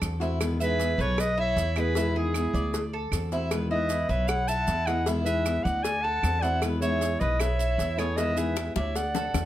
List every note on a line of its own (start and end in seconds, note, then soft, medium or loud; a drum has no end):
0.00 0.93 E2 medium
0.00 0.20 D3 medium
0.00 0.20 A3 medium
0.00 0.20 C4 medium
0.00 0.19 F#4 medium
0.00 0.20 A4 medium
0.00 cowbell medium
0.00 claves medium
0.00 maracas medium
0.20 0.40 A3 medium
0.20 0.40 C4 medium
0.20 0.40 E4 medium
0.20 0.39 F#4 medium
0.20 cowbell medium
0.20 maracas soft
0.40 0.59 B2 medium
0.40 0.59 D#3 medium
0.40 0.59 G#3 medium
0.40 0.60 B3 medium
0.40 0.58 E4 medium
0.40 0.60 B4 medium
0.40 cowbell loud
0.40 claves medium
0.40 maracas medium
0.59 0.80 D#3 medium
0.59 0.78 G#3 medium
0.59 0.79 B3 medium
0.59 0.78 E4 medium
0.59 1.01 G#4 medium
0.59 1.03 B4 loud
0.59 0.98 E5 medium
0.59 maracas medium
0.80 1.18 G#3 medium
0.80 1.18 B3 medium
0.80 1.18 E4 medium
0.80 cowbell medium
0.80 maracas medium
0.98 1.53 B1 loud
0.98 1.19 A4 medium
0.98 1.37 B4 medium
0.98 1.22 C#5 loud
0.98 maracas soft
1.18 1.38 B4 loud
1.18 1.39 D#5 loud
1.18 muted nylon-string guitar stroke medium
1.18 cowbell loud
1.18 claves medium
1.18 maracas medium
1.38 1.75 E4 medium
1.38 1.78 C#5 loud
1.38 1.81 E5 loud
1.56 2.48 E2 medium
1.56 1.76 E3 soft
1.56 1.76 A3 medium
1.56 1.76 B3 medium
1.56 1.75 E4 medium
1.56 cowbell medium
1.56 maracas medium
1.76 1.96 E3 medium
1.76 1.96 A3 medium
1.76 1.95 B3 medium
1.76 1.95 E4 medium
1.76 2.15 G#4 medium
1.76 1.96 G#4 medium
1.76 cowbell medium
1.76 claves medium
1.76 maracas soft
1.80 2.17 B4 loud
1.95 2.15 B2 medium
1.95 2.15 D#3 medium
1.95 2.15 G#3 medium
1.95 2.15 B3 medium
1.95 2.15 E4 medium
1.95 2.14 E4 medium
1.95 cowbell loud
1.95 maracas medium
2.15 2.35 D#3 medium
2.15 2.35 G#3 medium
2.15 2.34 B3 medium
2.15 2.34 E4 medium
2.15 2.89 E4 medium
2.15 2.53 G#4 medium
2.15 2.90 G#4 medium
2.34 2.74 G#3 medium
2.34 2.74 B3 medium
2.34 2.74 E4 medium
2.34 cowbell medium
2.34 claves medium
2.34 maracas medium
2.53 3.08 D2 medium
2.53 2.92 D5 medium
2.53 maracas soft
2.74 muted nylon-string guitar stroke medium
2.74 cowbell loud
2.74 maracas medium
2.93 3.31 A4 medium
3.11 4.03 E2 medium
3.11 3.31 D3 soft
3.11 3.32 A3 medium
3.11 3.31 C4 soft
3.11 3.31 F#4 medium
3.11 cowbell medium
3.11 claves medium
3.11 maracas medium
3.32 3.51 A3 medium
3.32 3.51 C4 medium
3.32 3.51 E4 medium
3.32 3.51 F#4 medium
3.32 cowbell medium
3.32 maracas soft
3.51 3.70 B2 medium
3.51 3.71 D#3 medium
3.51 3.71 G#3 medium
3.51 3.70 B3 medium
3.51 3.70 E4 medium
3.51 3.70 B4 medium
3.51 cowbell loud
3.51 claves medium
3.51 maracas medium
3.71 3.90 D#3 medium
3.71 3.90 G#3 medium
3.71 3.90 B3 medium
3.71 4.08 E4 medium
3.71 3.89 E4 medium
3.71 4.10 B4 loud
3.71 4.11 D#5 loud
3.89 4.29 G#3 medium
3.89 4.28 B3 medium
3.89 4.29 E4 medium
3.89 cowbell medium
3.89 maracas medium
4.09 4.64 B1 loud
4.09 4.47 B4 medium
4.09 4.29 C#5 medium
4.09 4.30 E5 loud
4.09 maracas soft
4.28 4.50 C#5 medium
4.28 4.50 F#5 loud
4.28 muted nylon-string guitar stroke medium
4.28 cowbell loud
4.28 claves medium
4.28 maracas medium
4.48 4.86 E4 medium
4.48 4.87 F#5 medium
4.48 4.88 A5 loud
4.48 maracas medium
4.67 5.59 E2 loud
4.67 4.86 E3 medium
4.67 4.87 A3 medium
4.67 4.87 B3 medium
4.67 4.86 E4 medium
4.67 cowbell medium
4.67 maracas medium
4.85 5.07 A3 medium
4.85 5.06 B3 medium
4.85 5.06 E4 medium
4.85 5.06 G#4 medium
4.85 5.06 D#5 medium
4.85 5.06 F#5 loud
4.85 cowbell medium
4.85 claves medium
4.85 maracas soft
4.89 5.06 E3 medium
5.06 5.25 B2 medium
5.06 5.25 D#3 medium
5.06 5.26 G#3 medium
5.06 5.26 B3 medium
5.06 5.26 E4 medium
5.06 5.25 E4 medium
5.06 cowbell loud
5.06 maracas medium
5.23 5.45 G#3 medium
5.23 5.45 B3 medium
5.23 5.45 E4 medium
5.23 5.64 G#4 medium
5.23 5.64 B4 loud
5.23 5.65 E5 loud
5.23 maracas medium
5.28 5.46 D#3 medium
5.46 5.84 G#3 medium
5.46 5.84 B3 medium
5.46 5.84 E4 medium
5.46 cowbell medium
5.46 claves medium
5.46 maracas medium
5.63 6.19 D2 loud
5.63 6.03 D5 medium
5.63 5.83 D#5 medium
5.63 5.85 F#5 loud
5.63 maracas soft
5.81 6.03 D5 loud
5.81 6.05 G#5 loud
5.81 muted nylon-string guitar stroke medium
5.81 cowbell loud
5.81 maracas medium
6.01 6.42 A4 medium
6.01 6.41 F#5 medium
6.01 6.44 A5 loud
6.23 7.14 E2 medium
6.23 6.42 D3 medium
6.23 6.42 A3 medium
6.23 6.41 C4 medium
6.23 6.41 F#4 medium
6.23 cowbell medium
6.23 claves medium
6.23 maracas medium
6.39 6.61 C4 medium
6.39 6.62 E4 medium
6.39 6.61 F#4 medium
6.39 6.60 D5 medium
6.39 6.62 F#5 loud
6.39 cowbell medium
6.44 6.62 A3 medium
6.44 maracas soft
6.62 6.81 B2 medium
6.62 6.81 D#3 medium
6.62 6.81 G#3 medium
6.62 6.81 B3 medium
6.62 6.81 E4 medium
6.62 6.81 B4 medium
6.62 cowbell loud
6.62 claves medium
6.62 maracas medium
6.79 7.00 G#3 medium
6.79 7.01 B3 medium
6.79 7.00 E4 medium
6.79 7.21 G#4 medium
6.79 7.21 C#5 loud
6.79 7.19 E5 medium
6.79 maracas medium
6.84 7.01 D#3 medium
7.01 7.39 G#3 medium
7.01 7.39 B3 medium
7.01 7.40 E4 medium
7.01 cowbell medium
7.01 maracas medium
7.19 7.75 B1 loud
7.19 7.41 B4 medium
7.19 7.58 B4 medium
7.19 7.42 D#5 medium
7.19 maracas soft
7.39 8.00 C#5 medium
7.39 8.00 E5 medium
7.39 muted nylon-string guitar stroke medium
7.39 cowbell loud
7.39 claves medium
7.39 maracas medium
7.59 7.97 E4 medium
7.59 maracas medium
7.78 8.70 E2 medium
7.78 7.97 E3 medium
7.78 7.97 A3 medium
7.78 7.97 B3 medium
7.78 7.96 E4 medium
7.78 cowbell medium
7.78 maracas medium
7.97 8.17 E3 medium
7.97 8.17 A3 medium
7.97 8.17 B3 medium
7.97 8.16 E4 medium
7.97 8.17 G#4 medium
7.97 8.19 A4 medium
7.97 8.18 C#5 medium
7.97 cowbell medium
7.97 claves medium
7.97 maracas soft
8.17 8.36 B2 medium
8.17 8.36 D#3 medium
8.17 8.36 G#3 medium
8.17 8.36 B3 medium
8.17 8.36 E4 medium
8.17 8.35 E4 medium
8.17 8.37 B4 medium
8.17 8.39 D#5 medium
8.17 cowbell loud
8.17 maracas medium
8.36 8.56 D#3 medium
8.36 8.56 G#3 medium
8.36 8.56 B3 medium
8.36 8.55 E4 medium
8.36 8.75 G#4 medium
8.36 8.76 B4 medium
8.36 8.75 E5 medium
8.36 maracas medium
8.56 8.95 G#3 medium
8.56 8.95 B3 medium
8.56 8.96 E4 medium
8.56 cowbell medium
8.56 high bongo medium
8.56 claves medium
8.56 maracas medium
8.76 9.30 D2 loud
8.76 8.97 C#5 medium
8.76 9.14 D5 medium
8.76 8.98 E5 medium
8.76 high bongo medium
8.76 maracas soft
8.95 9.45 D5 medium
8.95 9.45 F#5 medium
8.95 muted nylon-string guitar stroke medium
8.95 cowbell loud
8.95 maracas medium
9.15 9.45 A4 medium
9.15 low bongo medium
9.15 maracas medium
9.34 9.45 E2 medium
9.34 9.45 D3 soft
9.34 9.45 A3 medium
9.34 9.45 C4 medium
9.34 9.45 F#4 soft
9.34 cowbell medium
9.34 low bongo medium
9.34 claves medium
9.34 maracas medium